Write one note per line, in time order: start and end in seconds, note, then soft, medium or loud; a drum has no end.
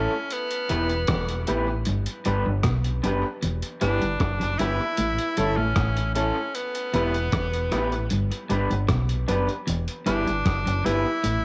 0.00 0.12 A3 medium
0.00 0.12 C#4 medium
0.00 0.34 C#4 medium
0.00 0.12 E4 medium
0.00 0.14 E4 medium
0.00 0.12 A4 medium
0.00 0.14 A4 medium
0.00 0.14 C#5 medium
0.31 1.49 B3 medium
0.31 closed hi-hat medium
0.51 closed hi-hat medium
0.69 1.05 E1 medium
0.69 0.93 E2 medium
0.69 0.90 B3 medium
0.69 0.92 E4 medium
0.69 0.90 E4 medium
0.69 0.92 G4 medium
0.69 0.90 G4 medium
0.69 0.92 B4 loud
0.69 0.90 B4 medium
0.69 closed hi-hat medium
0.89 closed hi-hat soft
1.07 1.44 E1 medium
1.07 1.32 E2 medium
1.07 kick loud
1.07 cross-stick loud
1.07 closed hi-hat loud
1.28 closed hi-hat medium
1.47 1.83 A1 medium
1.47 1.71 A2 medium
1.47 1.67 B3 medium
1.47 1.70 E4 medium
1.47 1.68 E4 medium
1.47 1.70 G4 medium
1.47 1.68 G4 medium
1.47 1.70 B4 loud
1.47 1.67 B4 medium
1.47 closed hi-hat medium
1.68 muted clean electric guitar stroke soft
1.85 2.06 G1 medium
1.85 1.99 G2 medium
1.85 closed hi-hat medium
2.06 closed hi-hat medium
2.25 2.45 G1 medium
2.25 2.38 G2 medium
2.25 2.46 B3 medium
2.25 2.48 D4 medium
2.25 2.46 D4 medium
2.25 2.48 G4 medium
2.25 2.46 G4 medium
2.25 2.48 B4 loud
2.25 2.46 B4 loud
2.25 closed hi-hat medium
2.46 2.64 G1 medium
2.46 2.57 G2 medium
2.63 3.00 B1 medium
2.63 2.88 B2 medium
2.63 kick medium
2.63 cross-stick loud
2.63 closed hi-hat medium
2.84 closed hi-hat medium
3.03 3.22 F#1 medium
3.03 3.16 F#2 medium
3.03 3.23 B3 medium
3.03 3.26 D4 medium
3.03 3.23 D4 medium
3.03 3.24 G4 medium
3.03 3.26 G4 medium
3.03 3.24 B4 medium
3.03 3.26 B4 medium
3.03 closed hi-hat medium
3.43 3.61 E1 medium
3.43 3.55 E2 medium
3.43 closed hi-hat medium
3.63 closed hi-hat medium
3.81 4.01 G1 medium
3.81 3.94 G2 medium
3.81 4.01 B3 medium
3.81 4.60 D4 loud
3.81 4.03 E4 medium
3.81 4.02 E4 medium
3.81 4.04 G4 medium
3.81 4.02 G4 medium
3.81 4.04 B4 loud
3.81 4.02 B4 medium
3.81 closed hi-hat medium
4.02 4.19 G1 medium
4.02 4.13 G2 medium
4.02 closed hi-hat soft
4.20 4.39 F#1 medium
4.20 4.33 F#2 medium
4.20 kick loud
4.20 cross-stick loud
4.20 closed hi-hat medium
4.40 4.58 F#1 medium
4.40 4.52 F#2 medium
4.40 closed hi-hat medium
4.58 4.78 G1 medium
4.58 4.72 G2 medium
4.58 4.79 B3 medium
4.58 5.58 E4 loud
4.58 4.82 E4 medium
4.58 4.79 E4 medium
4.58 4.82 G4 medium
4.58 4.79 G4 medium
4.58 4.79 B4 loud
4.58 4.82 B4 loud
4.58 closed hi-hat medium
4.80 muted clean electric guitar stroke soft
4.97 5.17 A1 medium
4.97 5.10 A2 medium
4.97 closed hi-hat medium
5.18 closed hi-hat medium
5.37 5.57 G1 medium
5.37 5.50 G2 medium
5.37 5.58 A3 medium
5.37 5.58 C#4 medium
5.37 5.60 E4 medium
5.37 5.58 E4 medium
5.37 5.60 A4 medium
5.37 5.58 A4 medium
5.37 5.60 C#5 medium
5.37 closed hi-hat medium
5.57 5.75 A1 medium
5.57 5.69 A2 medium
5.57 6.14 C#4 loud
5.76 6.30 A1 medium
5.76 6.00 A2 medium
5.76 kick loud
5.76 cross-stick loud
5.76 closed hi-hat medium
5.97 muted clean electric guitar stroke soft
5.97 closed hi-hat medium
6.15 6.36 A3 medium
6.15 6.56 C#4 medium
6.15 6.36 C#4 medium
6.15 6.38 E4 medium
6.15 6.36 E4 medium
6.15 6.38 A4 medium
6.15 6.36 A4 medium
6.15 6.38 C#5 medium
6.15 closed hi-hat medium
6.54 8.11 B3 medium
6.54 closed hi-hat medium
6.75 closed hi-hat medium
6.93 7.29 E1 medium
6.93 7.17 E2 medium
6.93 7.14 B3 medium
6.93 7.16 E4 medium
6.93 7.14 E4 medium
6.93 7.16 G4 medium
6.93 7.14 G4 medium
6.93 7.16 B4 loud
6.93 7.14 B4 medium
6.93 closed hi-hat medium
7.14 closed hi-hat soft
7.32 7.68 E1 medium
7.32 7.56 E2 medium
7.32 kick loud
7.32 cross-stick loud
7.32 closed hi-hat medium
7.54 closed hi-hat medium
7.71 8.07 A1 medium
7.71 7.95 A2 medium
7.71 7.92 B3 medium
7.71 7.94 E4 medium
7.71 7.92 E4 medium
7.71 7.94 G4 medium
7.71 7.92 G4 loud
7.71 7.94 B4 medium
7.71 7.91 B4 medium
7.71 cross-stick medium
7.71 closed hi-hat medium
7.92 muted clean electric guitar stroke soft
7.92 closed hi-hat soft
8.10 8.30 G1 medium
8.10 8.23 G2 medium
8.10 closed hi-hat medium
8.32 closed hi-hat medium
8.49 8.69 G1 medium
8.49 8.62 G2 medium
8.49 8.70 B3 medium
8.49 8.72 D4 medium
8.49 8.70 D4 medium
8.49 8.72 G4 medium
8.49 8.71 G4 medium
8.49 8.73 B4 loud
8.49 8.70 B4 medium
8.49 closed hi-hat medium
8.71 8.88 G1 medium
8.71 8.82 G2 medium
8.71 muted clean electric guitar stroke soft
8.71 closed hi-hat soft
8.89 9.25 B1 medium
8.89 9.13 B2 medium
8.89 kick loud
8.89 cross-stick loud
8.89 closed hi-hat medium
9.09 closed hi-hat medium
9.28 9.48 F#1 medium
9.28 9.41 F#2 medium
9.28 9.48 B3 medium
9.28 9.50 D4 medium
9.28 9.48 D4 medium
9.28 9.51 G4 medium
9.28 9.49 G4 medium
9.28 9.51 B4 medium
9.28 9.49 B4 medium
9.28 closed hi-hat medium
9.49 closed hi-hat soft
9.67 9.87 E1 medium
9.67 9.80 E2 medium
9.67 closed hi-hat medium
9.88 closed hi-hat medium
10.06 10.26 G1 medium
10.06 10.18 G2 medium
10.06 10.26 B3 medium
10.06 10.87 D4 loud
10.06 10.29 E4 medium
10.06 10.26 E4 medium
10.06 10.29 G4 medium
10.06 10.27 G4 medium
10.06 10.29 B4 loud
10.06 10.27 B4 medium
10.06 closed hi-hat medium
10.27 10.45 G1 medium
10.27 10.38 G2 medium
10.27 closed hi-hat soft
10.46 10.64 F#1 medium
10.46 10.58 F#2 medium
10.46 kick loud
10.46 cross-stick loud
10.46 closed hi-hat medium
10.66 10.84 F#1 medium
10.66 10.77 F#2 medium
10.66 closed hi-hat medium
10.85 11.04 G1 medium
10.85 10.97 G2 medium
10.85 11.05 B3 medium
10.85 11.07 E4 medium
10.85 11.45 E4 loud
10.85 11.05 E4 medium
10.85 11.07 G4 medium
10.85 11.05 G4 medium
10.85 11.07 B4 medium
10.85 11.04 B4 medium
10.85 closed hi-hat medium
11.05 muted clean electric guitar stroke soft
11.24 11.43 A1 medium
11.24 11.36 A2 medium
11.24 closed hi-hat medium